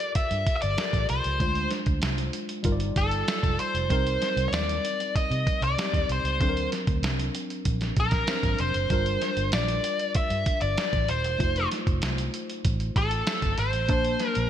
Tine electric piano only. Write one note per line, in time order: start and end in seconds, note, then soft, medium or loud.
0.00 0.75 F4 medium
0.00 0.75 G4 medium
0.00 0.74 A4 medium
0.00 0.75 A#4 medium
0.77 1.40 F4 soft
0.77 1.41 G4 soft
0.77 1.40 A4 soft
0.77 1.41 A#4 soft
1.39 2.62 G#3 medium
1.39 2.63 D4 medium
1.39 2.63 F4 soft
1.39 2.63 C5 medium
2.63 3.87 G3 medium
2.63 3.87 D#4 medium
2.63 3.88 F4 medium
2.63 2.72 A#4 medium
2.72 3.91 D5 medium
3.89 5.73 G3 medium
3.89 5.74 C4 medium
3.89 5.74 D#4 medium
3.89 5.75 A#4 medium
5.77 6.40 G3 soft
5.77 6.39 C4 soft
5.77 6.40 D#4 soft
5.77 6.41 G4 soft
6.40 8.24 F#3 medium
6.40 8.24 C4 medium
6.40 8.24 D4 medium
6.40 6.48 A4 medium
6.49 8.28 A#4 medium
8.27 8.90 F#3 soft
8.27 8.90 C4 soft
8.27 8.90 D4 soft
8.27 8.90 C5 soft
8.90 11.36 G3 medium
8.90 11.36 D4 medium
8.90 11.36 F4 medium
8.90 11.37 A#4 medium
11.38 13.85 A3 medium
11.38 13.85 D#4 medium
11.38 13.85 F4 medium
11.38 13.86 C5 medium
13.88 14.50 A#3 medium
13.88 14.50 D4 medium
13.88 14.50 C5 medium
13.88 14.50 A5 medium